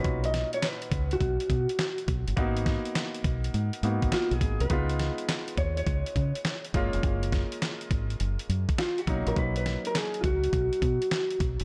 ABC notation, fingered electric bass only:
X:1
M:4/4
L:1/16
Q:"Swing 16ths" 1/4=103
K:Blyd
V:1 name="Fingered electric bass" clef=bass
B,,,3 z3 C,,2 B,,, z B,, z3 B,,, =G,,, | G,,,3 z3 B,,,2 G,, z G,, G,,, z B,,, G,,, ^B,,, | C,,3 z3 D,,2 C,, z C, z3 F,,, E,,, | F,,,3 z3 G,,,2 F,,, z F,, z3 B,,, A,,, |
B,,,3 z3 C,,2 B,,, z B,, z3 B,,, E,,, |]